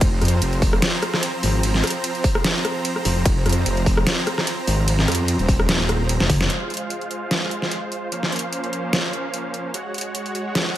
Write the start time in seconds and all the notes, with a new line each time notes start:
Already playing: F3 C4 C5
0.01 F1 A#5, kick, closed hi-hat, ride
0.21 F2, cross-stick, closed hi-hat
0.25 closed hi-hat
0.28 closed hi-hat
0.42 F1, closed hi-hat, ride
0.53 closed hi-hat
0.62 kick, open hi-hat
0.73 cross-stick
0.82 snare, closed hi-hat, ride
1.02 cross-stick, closed hi-hat
1.14 cross-stick, snare
1.23 closed hi-hat, ride
1.43 G#1, open hi-hat
1.63 closed hi-hat, ride
1.74 snare
1.84 cross-stick, closed hi-hat
1.87 closed hi-hat
1.90 closed hi-hat
2.04 closed hi-hat, ride
2.15 closed hi-hat
2.24 kick, open hi-hat
2.35 cross-stick
2.44 snare, closed hi-hat, ride
2.65 cross-stick, closed hi-hat
2.85 closed hi-hat, ride
2.96 cross-stick
3.05 F1, open hi-hat
3.25 F1, kick, closed hi-hat, ride
3.46 F2, cross-stick, closed hi-hat
3.49 closed hi-hat
3.53 closed hi-hat
3.66 F1, closed hi-hat, ride
3.77 closed hi-hat
3.86 kick, open hi-hat
3.97 cross-stick
4.07 snare, closed hi-hat, ride
4.27 cross-stick, closed hi-hat
4.38 cross-stick, snare
4.47 closed hi-hat, ride
4.67 G#1, open hi-hat
4.88 closed hi-hat, ride
4.99 snare
5.08 F2, cross-stick, closed hi-hat
5.12 closed hi-hat
5.15 closed hi-hat
5.28 closed hi-hat, ride
5.39 D#1, closed hi-hat
5.48 kick, open hi-hat
5.60 cross-stick
5.69 snare, closed hi-hat, ride
5.89 cross-stick, closed hi-hat
6.09 closed hi-hat, ride
6.20 F1, snare
6.30 kick, open hi-hat, mid tom
6.41 snare
6.50 G#3 F4 C5 F5, closed hi-hat
6.70 closed hi-hat
6.74 closed hi-hat
6.77 closed hi-hat
6.90 closed hi-hat
7.01 closed hi-hat
7.11 closed hi-hat
7.31 snare, closed hi-hat
7.51 closed hi-hat
7.62 snare
7.71 closed hi-hat
7.92 closed hi-hat
8.12 F3 A#3 C#4 F5, closed hi-hat
8.23 snare
8.32 closed hi-hat
8.36 closed hi-hat
8.39 closed hi-hat
8.53 closed hi-hat
8.64 closed hi-hat
8.73 closed hi-hat
8.93 snare, closed hi-hat
9.13 closed hi-hat
9.34 closed hi-hat
9.54 closed hi-hat
9.74 G#3 F#4 C#5 F#5, closed hi-hat
9.94 closed hi-hat
9.98 closed hi-hat
10.01 closed hi-hat
10.15 closed hi-hat
10.26 closed hi-hat
10.35 closed hi-hat
10.55 snare, closed hi-hat